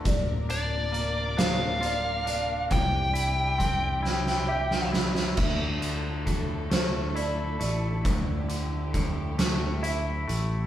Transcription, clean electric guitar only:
X:1
M:6/8
L:1/8
Q:3/8=45
K:Dm
V:1 name="Clean electric guitar"
B,, D B, D F D | C, E C E G E | D,, D, A,, A, E A, | D,, D, A,, A, E A, |]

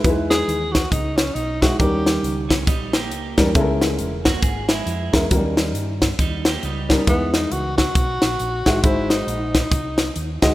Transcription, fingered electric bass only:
X:1
M:4/4
L:1/8
Q:"Swing" 1/4=136
K:Elyd
V:1 name="Fingered electric bass" clef=bass
E,,2 D,,2 C,,2 B,,,2 | D,,2 C,,2 A,,,2 C,, E,, | C,,2 E,,,2 G,,,2 ^E,, =E,, | D,,2 =G,,2 D,,2 C,,2 |
E,,2 C,,2 B,,, A,,, A,,, =A,,, | G,,,2 A,,,2 ^B,,,2 D,, =D,, |]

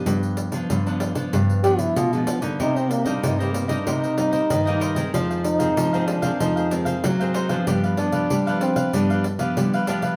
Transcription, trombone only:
X:1
M:4/4
L:1/16
Q:1/4=95
K:Gphr
V:1 name="Trombone"
G,2 z8 G =E F A, =B, D | E C B, D E G, B, D E8 | z2 E4 D2 E2 z6 | z2 D4 C2 D2 z6 |]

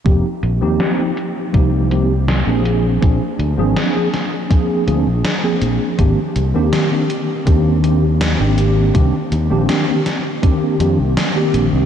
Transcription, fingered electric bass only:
X:1
M:4/4
L:1/16
Q:1/4=81
K:Fdor
V:1 name="Fingered electric bass" clef=bass
F,,, z B,,, E,, z4 C,,4- C,, B,,,3 | B,,, z D,, A,,, z6 D,, B,,, z2 B,,, z | A,,, z C,, E,, z4 E,,4- E,, A,,,3 | C,, z E,, B,,, z6 F,, C,, z2 B,,, C,, |]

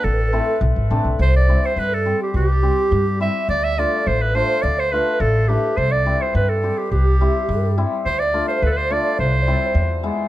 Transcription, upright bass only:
X:1
M:2/4
L:1/16
Q:1/4=105
K:Am
V:1 name="Upright bass" clef=bass
A,,,4 B,,, ^G,,, A,,, B,,, | [K:C] C,,4 G,,4 | C,,4 G,,4 | D,,4 A,,,4 |
D,,4 A,,,4 | C,,4 G,,4 | C,,4 G,,4 | D,,4 D,,4 |
C,,4 E,,4 |]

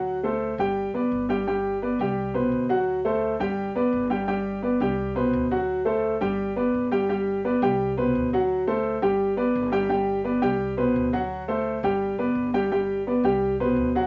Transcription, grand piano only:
X:1
M:4/4
L:1/8
Q:1/4=171
K:G
V:1 name="Grand piano"
[F,Ff] [A,Ac]2 [G,Gg]2 [B,Bd]2 [G,Gg] | [G,Gg]2 [B,Bd] [G,Gg]2 [B,,Bc]2 [F,Ff]- | [F,Ff] [A,Ac]2 [G,Gg]2 [B,Bd]2 [G,Gg] | [G,Gg]2 [B,Bd] [G,Gg]2 [B,,Bc]2 [F,Ff]- |
[F,Ff] [A,Ac]2 [G,Gg]2 [B,Bd]2 [G,Gg] | [G,Gg]2 [B,Bd] [G,Gg]2 [B,,Bc]2 [F,Ff]- | [F,Ff] [A,Ac]2 [G,Gg]2 [B,Bd]2 [G,Gg] | [G,Gg]2 [B,Bd] [G,Gg]2 [B,,Bc]2 [F,Ff]- |
[F,Ff] [A,Ac]2 [G,Gg]2 [B,Bd]2 [G,Gg] | [G,Gg]2 [B,Bd] [G,Gg]2 [B,,Bc]2 [F,Ff] |]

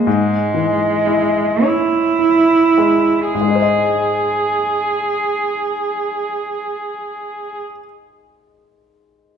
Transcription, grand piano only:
X:1
M:6/8
L:1/8
Q:3/8=39
K:Ab
V:1 name="Grand piano"
A,, _F, _F d F A, | [A,,A,Ece]6- | [A,,A,Ece]6 |]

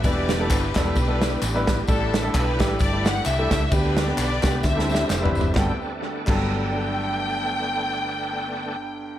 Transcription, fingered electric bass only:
X:1
M:4/4
L:1/8
Q:"Swing" 1/4=130
K:G
V:1 name="Fingered electric bass" clef=bass
E,,,2 G,,, E,,, B,,,2 A,,,2 | A,,,2 B,,, A,,, G,,,2 C,, ^C,, | D,,2 B,,, C,, D,,2 =F,,, ^F,,, | G,,, z2 G,,,4- G,,,- |
G,,,8 |]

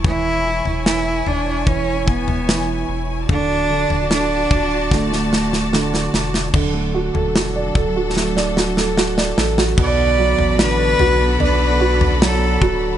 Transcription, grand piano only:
X:1
M:4/4
L:1/16
Q:1/4=74
K:Dlyd
V:1 name="Grand piano"
E,2 E,2 E,4 E,4 E,4 | D,2 D,2 D,4 D,4 D,4 | D, A, F A F d A F A, d F A F d A F | B,,2 F,2 D2 F2 D2 F2 F,2 F2 |]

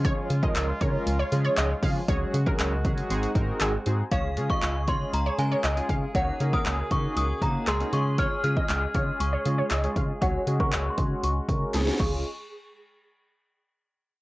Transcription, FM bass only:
X:1
M:4/4
L:1/8
Q:1/4=118
K:Db
V:1 name="FM bass" clef=bass
D, D, D,, D, D,, D, D,, D, | D,, D, D,, D, A,,, A,, A,,, A,, | D,, D, D,, D, D,, D, D,, D, | D,, D, D,, D, D,, D, D,, D,- |
D, D, D,, D, D,, D, D,, D, | D,, D, D,, D, D,, D, D,, D,, | z8 |]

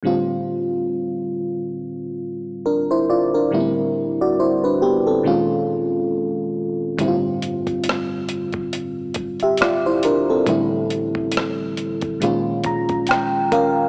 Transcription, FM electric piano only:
X:1
M:4/4
L:1/16
Q:"Swing 16ths" 1/4=69
K:Aphr
V:1 name="FM electric piano"
z12 [DB] [Ec] [Fd] [DB]- | [DB] z2 [^Fd] [Ec] [D=B] [=B,G] [CA]2 z6 z | z8 z3 [Ge] [Fd] [Ec] [DB] [CA]- | [CA] z8 z b2 g2 [_DBf]2 |]
V:2 name="FM electric piano" clef=bass
[A,,D,G,CF]12- [A,,D,G,CF]2 z2 | [A,,D,G,=B,CE]8 [_B,,_E,_A,_DF]8 | [A,,D,G,CEF]12- [A,,D,G,CEF]2 z2 | [A,,D,G,CE]8 [B,,_E,_A,_DF]8 |]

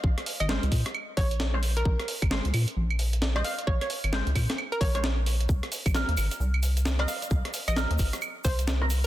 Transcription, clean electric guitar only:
X:1
M:4/4
L:1/16
Q:"Swing 16ths" 1/4=132
K:Bbm
V:1 name="Clean electric guitar"
z4 [A,Dc] z8 [A,Dc] z2 | z4 [A,Dc] z8 [A,Dc] z2 | z4 [A,Dc] z6 [A,Dc] z4 | z4 [G,CB] z8 [G,CB] z2 |
z4 [G,CB] z8 [G,CB] z2 |]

